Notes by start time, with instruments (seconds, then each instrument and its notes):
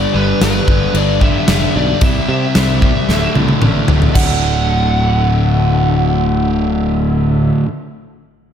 Already playing: overdriven electric guitar G2 D3 G3, tonewheel organ G3 D4 A4, lead electric guitar D5
0.13 fingered electric bass G1, overdriven electric guitar G2 D3 G3, lead electric guitar B4
0.41 fingered electric bass G1, overdriven electric guitar G2 D3 G3, lead electric guitar B4, snare, crash
0.66 fingered electric bass G1, overdriven electric guitar G2 D3 G3, kick
0.93 fingered electric bass G1, overdriven electric guitar G2 D3 G3, lead electric guitar D5, crash
1.19 overdriven electric guitar G2 D3 G3, lead electric guitar E5, kick
1.46 fingered electric bass F1, overdriven electric guitar G2 D3 G3, snare, crash
1.73 fingered electric bass B1, overdriven electric guitar G2 D3 G3, lead electric guitar D5
2.00 fingered electric bass C2, overdriven electric guitar C3 G3 C4, tonewheel organ C4 G4 D5, lead electric guitar E5, kick, crash
2.28 overdriven electric guitar C3 G3 C4, fingered electric bass C3, lead electric guitar E5
2.54 fingered electric bass C2, overdriven electric guitar C3 G3 C4, snare, crash
2.81 overdriven electric guitar C3 G3 C4, kick
3.08 fingered electric bass D1, overdriven electric guitar D2 A2 D3, tonewheel organ D4 A4 E5, snare
3.34 fingered electric bass C2, overdriven electric guitar D2 A2 D3, high tom
3.48 high tom
3.61 fingered electric bass A1, overdriven electric guitar D2 A2 D3, mid tom
3.87 fingered electric bass D1, overdriven electric guitar D2 A2 D3, floor tom
4.02 floor tom
4.13 fingered electric bass D1, overdriven electric guitar D2 A2, tonewheel organ D4 A4 E5, lead electric guitar F#5, kick, crash
4.17 overdriven electric guitar D3